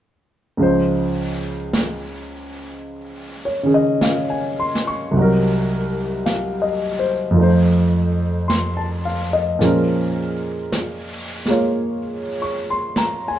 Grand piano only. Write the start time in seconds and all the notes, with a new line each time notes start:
0.57 C#2 C#3 F3
0.62 D#4 C5
3.45 C#5
3.63 C#3 D#3 C#4 G#4
3.74 D#5
4.02 F5
4.30 G#5
4.60 C6
4.87 C#6
5.11 C2 C3
5.17 F#3 D#4
5.22 A#4
6.26 F5
6.62 D#5
6.99 C5
7.31 F2 F3
7.37 A3 D#4
7.43 C5
8.48 C6
8.77 A5
9.05 F5
9.33 D#5
9.59 A#2 F3 G#3 C#4
9.65 A#4
11.48 G#3 A#3 F4 C#5
12.42 C#6
12.70 C6
12.98 A#5
13.28 G#5